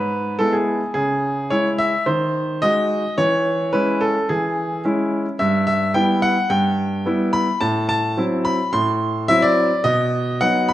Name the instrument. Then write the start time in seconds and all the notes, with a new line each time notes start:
grand piano
Already playing: G#2 B4
0.39 G#3 B3 E4 A4
0.53 G#4
0.94 C#3 G#4
1.50 G#3 E4 C#5
1.78 E5
2.06 D#3 C5
2.62 G#3 D#4 F#4 D#5
3.18 E3 C#5
3.73 G#3 C#4 E4 B4
4.01 A4
4.29 E3 G#4
4.85 G#3 C#4 E4
5.39 G2 E5
5.67 E5
5.94 G3 B3 E4 G5
6.22 F#5
6.50 G2 G5
7.06 G3 B3 E4
7.33 B5
7.61 A2 A5
7.89 A5
8.17 F#3 C4 E4
8.45 B5
8.73 A2 C6
9.28 F#3 C4 E4 E5
9.42 D5
9.84 B2 D#5
10.41 F#3 B3 D#4 F#5
10.69 B5